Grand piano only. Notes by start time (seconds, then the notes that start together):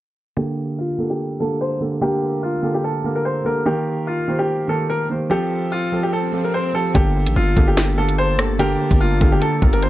0.37 D3 A#3 G4 A4
0.98 D3 A#3 G4 A4
1.40 D3 A#3 G4 A4
1.80 D3 A#3 G4 A4
2.01 D3 A#3 G4 A#4
2.63 D3 A#3 G4 A4
3.04 D3 A#3 G4 A#4
3.45 D3 A#3 G4 A4
3.65 D#3 A#3 G4 A#4
4.28 D#3 A#3 G4 C5
4.68 D#3 A#3 G4 A#4
5.10 D#3 A#3 G4 C5
5.30 F3 C4 G4 A4
5.92 F3 C4 G4 A4
6.32 F3 C4 G4 A4
6.74 F3 C4 G4 A4
6.94 D3 A#3 G4 A4
7.56 D3 A#3 G4 A4
7.98 D3 A#3 G4 A4
8.38 D3 A#3 G4 A4
8.59 D3 A#3 G4 A#4
9.20 D3 A#3 G4 A4
9.62 D3 A#3 G4 A#4